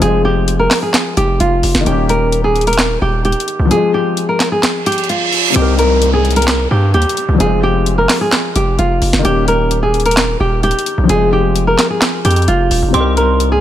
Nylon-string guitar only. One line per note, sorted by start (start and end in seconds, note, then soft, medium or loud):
0.02 0.23 G#4 loud
0.25 0.57 G4 medium
0.59 0.80 A#4 medium
0.82 1.15 G#4 medium
1.17 1.38 G4 medium
1.40 1.84 F4 medium
1.86 2.07 G4 medium
2.09 2.42 A#4 medium
2.44 2.65 G#4 medium
2.67 3.00 A#4 medium
3.02 3.23 G4 medium
3.25 3.68 G4 medium
3.71 3.92 G#4 loud
3.94 4.27 G4 medium
4.29 4.50 A#4 medium
4.52 4.84 G#4 medium
4.86 5.07 G4 medium
5.09 5.53 F4 medium
5.56 5.77 G4 loud
5.79 6.11 A#4 medium
6.13 6.34 G#4 medium
6.36 6.69 A#4 medium
6.71 6.92 G4 medium
6.94 7.37 G4 medium
7.40 7.61 G#4 loud
7.63 7.96 G4 medium
7.98 8.19 A#4 medium
8.21 8.53 G#4 medium
8.56 8.77 G4 medium
8.79 9.22 F4 medium
9.25 9.46 G4 medium
9.48 9.80 A#4 medium
9.83 10.04 G#4 medium
10.06 10.38 A#4 medium
10.40 10.61 G4 medium
10.63 11.07 G4 medium
11.09 11.30 G#4 loud
11.33 11.65 G4 medium
11.67 11.88 A#4 medium
11.90 12.23 G#4 medium
12.25 12.46 G4 loud
12.48 12.91 F4 medium
12.94 13.15 G4 loud
13.17 13.50 A#4 medium
13.52 13.61 G#4 medium